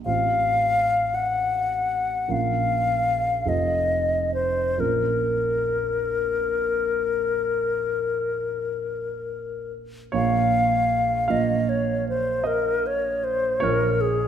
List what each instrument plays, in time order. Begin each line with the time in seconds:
0.05 grand piano A1 C4 F4 C5, flute F5
1.15 flute F#5
2.28 grand piano A#1 C#4 F4 A#4, flute F5
3.46 grand piano F1 C4 F4 A4, flute D#5
4.34 flute C5
4.78 grand piano A#1 C#4 F4 A#4, flute A#4
10.12 grand piano A#1 A#3 F4 A#4 C#5, flute F5
11.28 grand piano A#1 A#3 F4 A#4 F5, flute D#5
11.69 flute C#5
12.09 flute C5
12.44 flute A#4, grand piano D#5
12.86 flute C#5
13.24 flute C5
13.60 grand piano A#1 A#3 F4 A#4 C#5, flute A#4
14.01 flute G#4